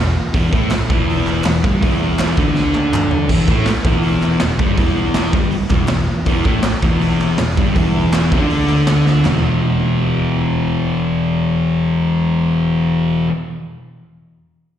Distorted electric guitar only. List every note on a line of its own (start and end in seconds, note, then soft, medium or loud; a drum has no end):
0.00 0.12 E2 medium
0.34 0.52 E2 loud
0.34 0.52 E3 loud
0.53 0.71 A2 loud
0.53 0.71 A3 loud
0.72 muted distorted electric guitar stroke medium
0.89 1.44 E2 loud
0.89 1.45 E3 loud
1.46 1.60 E2 medium
1.63 1.81 G2 loud
1.63 1.82 G3 loud
1.82 2.37 E2 loud
1.82 2.37 E3 loud
2.38 3.30 D3 medium
2.38 3.30 D4 loud
3.29 3.47 E2 medium
3.29 3.48 E3 loud
3.48 3.66 A2 medium
3.48 3.67 A3 loud
3.67 muted distorted electric guitar stroke medium
3.86 4.41 E2 loud
3.86 4.41 E3 loud
4.42 4.57 E2 medium
4.59 4.77 G2 medium
4.59 4.78 G3 loud
4.78 5.33 E2 loud
4.78 5.34 E3 loud
5.34 5.51 G2 loud
5.34 5.52 G3 loud
5.51 muted distorted electric guitar stroke medium
5.70 5.88 E2 loud
5.70 5.89 E3 loud
5.89 6.04 E2 medium
6.26 6.44 E2 loud
6.26 6.45 E3 loud
6.45 6.63 A2 loud
6.45 6.64 A3 loud
6.65 muted distorted electric guitar stroke medium
6.83 7.38 E2 loud
6.83 7.39 E3 loud
7.39 7.54 E2 medium
7.57 7.75 G2 medium
7.57 7.76 G3 loud
7.76 8.31 E2 medium
7.76 8.32 E3 loud
8.32 9.25 D3 loud
8.32 9.26 D4 loud
9.25 13.27 E2 medium
9.25 13.29 B2 loud
9.29 13.31 E3 loud